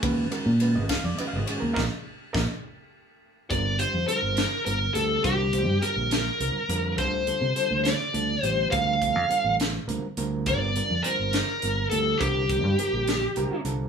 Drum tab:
RD |xxxxxx|------|------|------|
HH |------|------|xxxxxx|xxxxxx|
SD |---o--|o-o---|---o--|---o--|
BD |o--o--|o-o---|o-----|oo----|

RD |------|------|------|------|
HH |xxxxxx|xxxxxx|xxxxxx|xxxxxx|
SD |---o--|---o--|---o--|---o--|
BD |o-----|oo----|o-----|oo----|